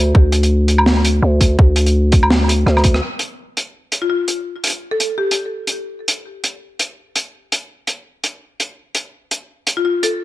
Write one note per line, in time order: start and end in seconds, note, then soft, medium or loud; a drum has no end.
0.00 0.13 D2 loud
0.00 0.12 G4 medium
0.15 1.21 D2 medium
0.15 kick loud
0.32 closed hi-hat medium
0.43 closed hi-hat medium
0.68 closed hi-hat medium
0.78 low woodblock medium
0.86 snare loud
0.97 low woodblock soft
1.05 closed hi-hat medium
1.22 1.57 D2 loud
1.41 kick medium
1.41 closed hi-hat medium
1.59 2.65 D2 loud
1.59 kick loud
1.76 closed hi-hat medium
1.86 closed hi-hat soft
2.12 kick loud
2.12 closed hi-hat medium
2.23 low woodblock medium
2.30 snare loud
2.44 low woodblock soft
2.48 closed hi-hat medium
2.48 low woodblock soft
2.66 3.01 D2 loud
2.66 cross-stick medium
2.77 cross-stick medium
2.77 low woodblock medium
2.84 kick medium
2.84 closed hi-hat medium
2.94 cross-stick medium
3.19 closed hi-hat medium
3.57 closed hi-hat medium
3.92 closed hi-hat medium
4.02 4.07 F4 medium
4.10 4.16 F4 medium
4.28 closed hi-hat medium
4.64 closed hi-hat medium
4.67 closed hi-hat medium
4.70 closed hi-hat medium
4.91 5.13 A4 medium
5.00 closed hi-hat medium
5.18 5.68 G4 medium
5.31 closed hi-hat medium
5.67 closed hi-hat medium
6.08 closed hi-hat medium
6.44 closed hi-hat medium
6.79 closed hi-hat medium
7.16 closed hi-hat medium
7.52 closed hi-hat medium
7.87 closed hi-hat medium
8.24 closed hi-hat medium
8.60 closed hi-hat medium
8.95 closed hi-hat medium
9.31 closed hi-hat medium
9.67 closed hi-hat medium
9.77 9.82 F4 medium
9.85 9.91 F4 medium
10.03 10.24 A4 medium
10.03 closed hi-hat medium